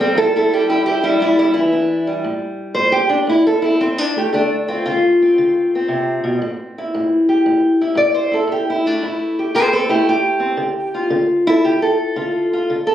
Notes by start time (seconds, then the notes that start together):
Already playing: A2
0.00 G3 C4 A4
0.15 E2 E4 A4
0.36 E4 A4
0.53 G3 E4 G4
0.68 E2 E4 G4
0.86 E4 G4
1.03 G3 D4 E4
1.19 E2 G3 E4
1.39 G3 E4
1.54 E3 E4
1.73 E2 D4
2.07 G3
2.24 A2
2.74 A2 C5
2.92 G4
3.09 D4
3.27 A2 E4
3.47 A4
3.62 C4 E4
3.81 A2 C4
3.98 D4
4.16 A3 G4
4.33 D3 A3 D4
4.68 C4 F4
4.86 D3 F4
5.22 C4
5.38 D3
5.75 C4
5.88 C3
6.24 B2
6.42 A2
6.78 E4
6.95 A2
7.29 G4
7.46 A2
7.81 E4
7.95 A2 D5
8.14 C5
8.31 E4 A4
8.47 A2
8.52 G4
8.70 E4
8.86 A3 D4
9.03 A2 E4
9.39 G4
9.54 A2 A4 C5
9.73 C4 A4
9.89 A3 E4 G4
10.07 A2 G4
10.40 C4
10.57 D3
10.94 F4
11.10 D3
11.47 E4 A4
11.65 D3 G4
11.82 A4
12.16 D3 F4
12.53 F4
12.70 D3
12.87 A4